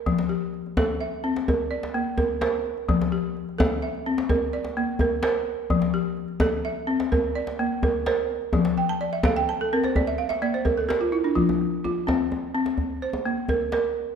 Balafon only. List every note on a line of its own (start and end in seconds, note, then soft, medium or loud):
0.00 0.29 A#4 medium
0.06 0.53 F3 medium
0.29 1.00 G4 medium
0.77 1.24 A4 medium
1.01 1.71 E5 medium
1.24 1.47 C4 medium
1.48 2.16 A#4 medium
1.71 2.41 D5 medium
1.94 2.41 A#3 medium
2.18 2.40 A#4 medium
2.41 2.88 A#4 medium
2.41 3.12 C5 medium
2.89 3.35 F3 medium
3.12 3.83 G4 medium
3.58 4.06 A4 medium
3.82 4.53 E5 medium
4.06 4.30 C4 medium
4.29 4.99 A#4 medium
4.53 5.24 D5 medium
4.77 5.24 A#3 medium
5.01 5.23 A#4 medium
5.24 5.71 A#4 medium
5.24 5.94 C5 medium
5.70 6.18 F3 medium
5.94 6.65 G4 medium
6.41 6.88 A4 medium
6.65 7.36 E5 medium
6.87 7.11 C4 medium
7.12 7.82 A#4 medium
7.35 8.06 D5 medium
7.59 8.06 A#3 medium
7.83 8.06 A#4 medium
8.07 8.54 A#4 medium
8.07 8.77 C5 medium
8.53 9.01 F3 medium
8.78 8.99 G5 medium
8.89 9.11 A5 medium
9.01 9.23 D5 medium
9.13 9.34 E5 medium
9.25 9.60 A4 medium
9.25 9.47 F5 medium
9.37 9.58 G5 medium
9.49 9.70 A5 medium
9.61 9.82 A4 medium
9.73 9.96 C4 medium
9.73 9.94 A#4 medium
9.84 10.06 C5 medium
9.96 10.17 D5 medium
10.07 10.28 E5 medium
10.18 10.40 F5 medium
10.29 10.52 E5 medium
10.42 10.89 A#3 medium
10.42 10.64 D5 medium
10.54 10.76 C5 medium
10.65 10.87 A#4 medium
10.77 10.99 A4 medium
10.89 11.11 G4 medium
10.89 11.36 A#4 medium
11.01 11.23 F4 medium
11.12 11.34 E4 medium
11.24 11.46 D4 medium
11.35 11.83 F3 medium
11.35 11.83 F4 medium
11.84 12.55 F4 medium
12.07 12.53 C4 medium
12.55 12.78 C4 medium
13.02 13.73 C5 medium
13.25 13.72 A#3 medium
13.49 13.72 A#4 medium
13.73 14.15 A#4 medium